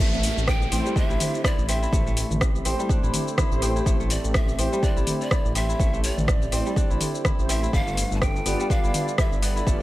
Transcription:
Already playing: B3 D4 E4
0.00 A1 A3 C4 G4 E5, downlifter, shaker
0.13 A3, shaker
0.23 open hi-hat, shaker
0.37 A1, shaker
0.48 G5, kick, cross-stick, shaker
0.62 shaker
0.72 A1 A3 C4 E4 G4 C5, open hi-hat, shaker
0.85 G3, shaker
0.96 D4 E5, kick, shaker
1.10 A1 E4, shaker
1.20 open hi-hat, mid tom, shaker
1.35 shaker
1.44 A3 E4 G4 C5 D5, kick, cross-stick, shaker
1.58 A1, shaker
1.69 C4 E5, open hi-hat, shaker
1.82 E4, shaker
1.93 A1 A3 E4 G4 C5, kick, shaker
2.07 A3, shaker
2.17 open hi-hat, shaker
2.30 A1, mid tom, shaker
2.41 kick, cross-stick, shaker
2.55 shaker
2.65 A1 A3 C4 E4 G4 C5, open hi-hat, shaker
2.79 G3, shaker
2.89 D4, kick, shaker
3.03 A1 A3 E4 G4 C5, shaker
3.14 open hi-hat, mid tom, shaker
3.28 shaker
3.38 E4, kick, cross-stick, mid tom, shaker
3.51 A1 A3 E4 G4 C5, shaker
3.62 C4, open hi-hat, shaker
3.76 E4, shaker
3.86 A1 A3 E4 G4 C5, kick, shaker
4.00 A3, shaker
4.10 D5, open hi-hat, shaker
4.24 A1, shaker
4.34 E5, kick, cross-stick, shaker
4.49 shaker
4.58 A1 A3 C4 E4 G4 C5, open hi-hat, shaker
4.73 G3, shaker
4.82 D4 D5, kick, shaker
4.96 A1 E4, shaker
5.07 open hi-hat, mid tom, shaker
5.20 D5, shaker
5.31 A3 E4 G4 C5, kick, cross-stick, shaker
5.45 A1, shaker
5.55 C4 E5, open hi-hat, shaker
5.69 E4, shaker
5.79 A1 A3 E4 G4 C5, kick, shaker
5.93 A3, shaker
6.04 C#5, open hi-hat, shaker
6.17 A1 D5, mid tom, shaker
6.28 kick, cross-stick, shaker
6.42 shaker
6.52 A1 A3 C4 E4 G4 C5, open hi-hat, shaker
6.66 G3, shaker
6.76 D4, kick, shaker
6.90 A1 A3 E4 G4 C5, shaker
7.01 open hi-hat, mid tom, shaker
7.15 shaker
7.25 E4, kick, cross-stick, mid tom, shaker
7.38 A1 A3 E4 G4 C5, shaker
7.49 C4 E5, open hi-hat, shaker
7.63 E4, shaker
7.73 G1 G3 A3 B3 D4 F4 G4 A4 B4 D5 F5, kick, shaker
7.87 A3, shaker
7.97 open hi-hat, shaker
8.11 G1, shaker
8.15 A5
8.21 G5, kick, cross-stick, shaker
8.36 shaker
8.46 G1 B3 F4 G4 D5, open hi-hat, shaker
8.60 G3, shaker
8.70 D4 F5, kick, shaker
8.84 G1 E4, shaker
8.94 open hi-hat, mid tom, shaker
9.08 shaker
9.18 B3 E4 F4 G4 D5 E5, kick, cross-stick, shaker
9.32 G1, shaker
9.42 B3 D5, open hi-hat, shaker
9.56 E4, shaker
9.67 G1 A3 B3 F4 G4 D5, kick, shaker

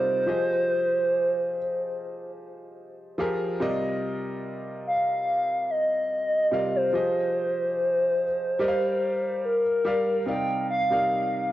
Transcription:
Already playing: C3 G3 D#4 F4 A#4 C5 D5
0.26 F3 F4 G4 G#4 D#5
3.18 F3 F4 G4 G#4 A#4
3.60 C3 G3 F4 A#4 D5 D#5
4.87 F5
5.70 D#5
6.51 C3 G3 F4 A#4 D5 F5
6.76 C5
6.93 F3 F4 G4 G#4 D#5
8.59 G3 G4 A#4 D5 D#5
8.68 F5
9.45 A#4
9.85 G3 G4 A#4 D5 F5
10.26 C3 G3 D#4 A#4 D5 F5 G5
10.70 F5
10.90 C3 G3 D#4 A#4 D5 F5

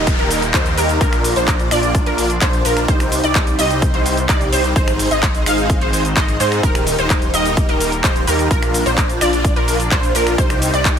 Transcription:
Already playing: D#1 G3 A#3 D#4 G4 A#4 D#5, downlifter
0.07 kick, closed hi-hat, shaker
0.19 D#1 D#4 G4 A#4, closed hi-hat
0.31 open hi-hat, shaker
0.42 closed hi-hat, shaker
0.54 D#2 D#4 G4 C5, kick, clap, closed hi-hat, shaker
0.66 closed hi-hat, shaker
0.78 D#2 D#4 G4 A#4, open hi-hat, shaker
0.89 closed hi-hat, shaker
1.01 A#1 A#3 D4 F4 A#4 D5, kick, closed hi-hat, shaker
1.13 finger snap, closed hi-hat, shaker
1.24 open hi-hat, shaker
1.36 A#1 D4 F4 C5, closed hi-hat, shaker
1.48 kick, clap, closed hi-hat, shaker
1.59 closed hi-hat, shaker
1.71 A#1 D4 F4 D5, finger snap, open hi-hat, shaker
1.83 closed hi-hat, shaker
1.95 kick, closed hi-hat, shaker
2.06 A#1 D4 F4 A#4, closed hi-hat
2.18 open hi-hat, shaker
2.30 closed hi-hat, shaker
2.41 A#1 D4 F4 C5, kick, clap, closed hi-hat, shaker
2.53 closed hi-hat, shaker
2.65 A#1 D4 F4 A#4, open hi-hat, shaker
2.77 finger snap, closed hi-hat, shaker
2.88 C2 G3 C4 D#4 G4 C5, kick, closed hi-hat, shaker
3.00 finger snap, closed hi-hat, shaker
3.12 open hi-hat, shaker
3.24 C2 D#4 G4 D5, closed hi-hat, shaker
3.35 kick, clap, closed hi-hat, shaker
3.47 closed hi-hat, shaker
3.59 C2 D#4 G4 D#5, open hi-hat, shaker
3.70 closed hi-hat, shaker
3.82 kick, closed hi-hat, shaker
3.94 C2 D#4 G4 C5, closed hi-hat
4.06 open hi-hat, shaker
4.17 closed hi-hat, shaker
4.29 C2 D#4 G4 D5, kick, clap, closed hi-hat, shaker
4.41 closed hi-hat, shaker
4.52 C2 D#4 G4 C5, open hi-hat, shaker
4.64 closed hi-hat, shaker
4.76 G#1 G#3 D#4 G#4 C5, kick, closed hi-hat, shaker
4.88 finger snap, closed hi-hat, shaker
4.99 open hi-hat, shaker
5.11 G#1 D#4 G#4 D#5, closed hi-hat, shaker
5.23 kick, clap, closed hi-hat, shaker
5.35 closed hi-hat, shaker
5.46 G#1 D#4 G#4 F5, finger snap, open hi-hat, shaker
5.58 closed hi-hat, shaker
5.70 kick, closed hi-hat, shaker
5.81 G#1 D#4 G#4 C5, closed hi-hat
5.93 open hi-hat, shaker
6.05 closed hi-hat, shaker
6.16 G#1 D#4 G#4 D#5, kick, clap, closed hi-hat, shaker
6.28 closed hi-hat, shaker
6.40 G#2 D#4 G#4 C5, open hi-hat, shaker
6.52 finger snap, closed hi-hat, shaker
6.63 D#1 G3 A#3 D#4 G4 A#4, kick, closed hi-hat, shaker
6.75 finger snap, closed hi-hat, shaker
6.87 open hi-hat, shaker
6.99 D#1 D#4 G4 C5, closed hi-hat, shaker
7.10 kick, clap, closed hi-hat, shaker
7.22 closed hi-hat, shaker
7.34 D#1 D#4 G4 D#5, open hi-hat, shaker
7.45 closed hi-hat, shaker
7.57 kick, closed hi-hat, shaker
7.69 D#1 D#4 G4 A#4, closed hi-hat
7.80 open hi-hat, shaker
7.92 closed hi-hat, shaker
8.04 D#1 D#4 G4 C5, kick, clap, closed hi-hat, shaker
8.16 closed hi-hat, shaker
8.27 D#2 D#4 G4 A#4, open hi-hat, shaker
8.39 closed hi-hat, shaker
8.51 A#1 D4 F4 A#4 D5, kick, closed hi-hat, shaker
8.63 finger snap, closed hi-hat, shaker
8.74 open hi-hat, shaker
8.86 A#1 D4 F4 C5, closed hi-hat, shaker
8.98 kick, clap, closed hi-hat, shaker
9.09 closed hi-hat, shaker
9.21 A#1 D4 F4 D5, finger snap, open hi-hat, shaker
9.33 closed hi-hat, shaker
9.45 kick, closed hi-hat, shaker
9.56 A#1 D4 F4 A#4, closed hi-hat
9.68 open hi-hat, shaker
9.80 closed hi-hat, shaker
9.91 A#1 D4 F4 C5, kick, clap, closed hi-hat, shaker
10.03 closed hi-hat, shaker
10.15 A#1 D4 F4 A#4, open hi-hat, shaker
10.27 finger snap, closed hi-hat, shaker
10.38 C2 G3 C4 D#4 G4 C5, kick, closed hi-hat, shaker
10.50 finger snap, closed hi-hat, shaker
10.62 open hi-hat, shaker
10.73 C2 D#4 G4 D5, closed hi-hat, shaker
10.85 kick, clap, closed hi-hat, shaker

